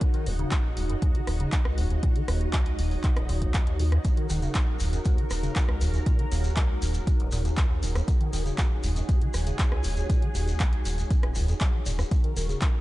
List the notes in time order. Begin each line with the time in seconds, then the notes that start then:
Already playing: D#4 F#4 G#4 C#5 F#5
0.01 D#2 D#5, kick, closed hi-hat
0.14 D#3, closed hi-hat
0.26 D#1 C#2, open hi-hat
0.39 C#3, closed hi-hat
0.51 D#1, kick, clap, closed hi-hat
0.77 D#1 D#2, open hi-hat
0.89 F#2, closed hi-hat
1.02 D#2, kick, closed hi-hat
1.15 D#3, closed hi-hat
1.27 D#1, cross-stick, open hi-hat
1.40 C#3, closed hi-hat
1.52 kick, clap, closed hi-hat
1.65 C#2, cross-stick
1.78 D#1 D#2, open hi-hat
1.90 D#2, closed hi-hat
2.03 A#2, kick, closed hi-hat
2.16 D#3, closed hi-hat
2.28 D#1 D#2, cross-stick, open hi-hat
2.41 closed hi-hat
2.53 C#2, kick, clap, closed hi-hat
2.66 closed hi-hat
2.79 D#1 D#2, open hi-hat
2.91 C#2, open hi-hat
3.04 D#3, kick, clap, closed hi-hat
3.16 D#1, cross-stick, closed hi-hat
3.29 D#1 A#2 G#5, open hi-hat
3.42 D#2, kick, closed hi-hat
3.54 C#2, kick, clap, closed hi-hat
3.67 D#2, closed hi-hat
3.79 D#2 D#3, open hi-hat
3.92 D#2, cross-stick, closed hi-hat
4.04 D#2 A#4, kick, closed hi-hat, shekere
4.17 D#3, closed hi-hat
4.29 D#1 D#3, open hi-hat, shekere
4.42 C#3, closed hi-hat, shekere
4.55 D#1, kick, clap, closed hi-hat, shekere
4.80 D#1 D#2, open hi-hat, shekere
4.93 F#2, closed hi-hat, shekere
5.05 D#2, kick, closed hi-hat, shekere
5.18 D#3, closed hi-hat
5.30 D#1, cross-stick, open hi-hat, shekere
5.43 C#3, closed hi-hat, shekere
5.56 kick, clap, closed hi-hat, shekere
5.68 C#2, cross-stick
5.81 D#1 D#2, open hi-hat, shekere
5.94 D#2, closed hi-hat, shekere
6.06 A#2, kick, closed hi-hat, shekere
6.19 D#3, closed hi-hat
6.31 D#1 D#2, open hi-hat, shekere
6.44 closed hi-hat, shekere
6.56 C#2, kick, clap, closed hi-hat, shekere
6.82 D#1 D#2, open hi-hat, shekere
6.94 C#2, closed hi-hat, shekere
7.07 D#3, kick, closed hi-hat, shekere
7.20 D#1, closed hi-hat
7.32 D#1 A#2, open hi-hat, shekere
7.45 D#2, closed hi-hat, shekere
7.57 C#2, kick, clap, closed hi-hat, shekere
7.70 D#2
7.83 D#1 D#3, open hi-hat, shekere
7.95 D#2, cross-stick, closed hi-hat, shekere
8.08 D#2 G#4, kick, closed hi-hat, shekere
8.21 D#3, closed hi-hat
8.33 D#1 D#3, open hi-hat, shekere
8.46 C#3, closed hi-hat, shekere
8.58 D#1, kick, clap, closed hi-hat, shekere
8.83 D#1 D#2, open hi-hat, shekere
8.96 F#2, closed hi-hat, shekere
9.09 D#2, kick, closed hi-hat, shekere
9.21 D#3, closed hi-hat
9.34 D#1, cross-stick, open hi-hat, shekere
9.46 C#3, closed hi-hat, shekere
9.59 kick, clap, closed hi-hat, shekere
9.72 C#2, cross-stick
9.84 D#1 D#2, open hi-hat, shekere
9.97 D#2, closed hi-hat, shekere
10.10 A#2, kick, closed hi-hat, shekere
10.22 D#3, closed hi-hat
10.35 D#1 D#2, open hi-hat, shekere
10.48 closed hi-hat, shekere
10.60 C#2, kick, clap, closed hi-hat, shekere
10.73 closed hi-hat
10.85 D#1 D#2, open hi-hat, shekere
10.98 C#2, closed hi-hat, shekere
11.11 D#3, kick, closed hi-hat, shekere
11.23 D#1, cross-stick, closed hi-hat
11.35 D#1 C#2 C#6, open hi-hat, shekere
11.48 F2, closed hi-hat, shekere
11.60 F#3, kick, clap, closed hi-hat, shekere
11.74 D#3
11.86 D#1 A#2, open hi-hat, shekere
11.99 D#2, cross-stick, closed hi-hat, shekere
12.11 D#2 A#4, kick, closed hi-hat, shekere
12.24 D#3, closed hi-hat
12.37 D#1 D#3, open hi-hat, shekere
12.49 C#3, closed hi-hat, shekere
12.61 D#1, kick, clap, closed hi-hat, shekere